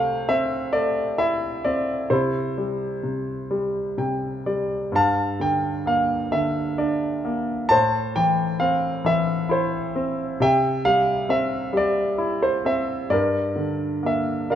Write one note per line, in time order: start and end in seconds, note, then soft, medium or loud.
0.00 2.07 C3 medium
0.00 0.73 A3 soft
0.00 0.72 C5 medium
0.00 0.31 F5 medium
0.00 2.13 G5 medium
0.29 1.64 C4 soft
0.29 0.76 E5 medium
0.73 2.07 A3 soft
0.73 1.21 D5 medium
1.18 2.08 E4 soft
1.18 1.66 E5 medium
1.65 2.10 C4 soft
1.65 2.12 D5 medium
2.10 3.02 C3 soft
2.10 4.43 E4 soft
2.10 4.41 C5 medium
2.58 3.49 G3 soft
3.03 3.96 C3 soft
3.51 4.45 G3 soft
3.97 4.90 C3 soft
3.97 4.42 G5 soft
4.46 4.92 G3 soft
4.46 4.90 D5 soft
4.92 7.67 G2 soft
4.92 5.86 F5 medium
4.92 5.43 A5 medium
5.40 6.32 D3 soft
5.40 5.89 G5 medium
5.86 7.23 A#3 soft
5.86 6.35 F5 medium
6.32 7.67 D3 soft
6.32 6.76 E5 medium
6.78 7.68 D4 soft
6.78 7.22 D5 medium
7.25 7.70 A#3 soft
7.69 10.36 A2 soft
7.69 9.02 C5 medium
7.69 8.17 A5 medium
8.16 9.03 E3 soft
8.16 8.63 G5 medium
8.60 9.94 C4 soft
8.60 9.07 F5 medium
9.04 10.36 E3 soft
9.04 9.52 E5 medium
9.49 10.37 E4 soft
9.49 9.93 C5 medium
9.95 10.39 C4 soft
10.40 13.09 C3 medium
10.40 11.29 E5 medium
10.40 10.83 G5 medium
10.85 11.71 G3 soft
10.85 11.27 F5 medium
11.29 12.63 C4 soft
11.29 11.77 E5 medium
11.73 13.07 G3 soft
11.77 12.41 D5 medium
12.18 13.08 E4 soft
12.43 12.67 C5 medium
12.65 13.10 C4 soft
12.65 13.14 E5 medium
13.10 14.55 G2 soft
13.10 14.49 A#4 soft
13.10 14.49 D5 medium
13.56 14.49 D3 soft
14.03 14.55 A#3 soft
14.03 14.50 E5 medium
14.50 14.55 D3 soft
14.50 14.55 A#4 soft
14.50 14.55 D5 soft
14.50 14.55 F5 medium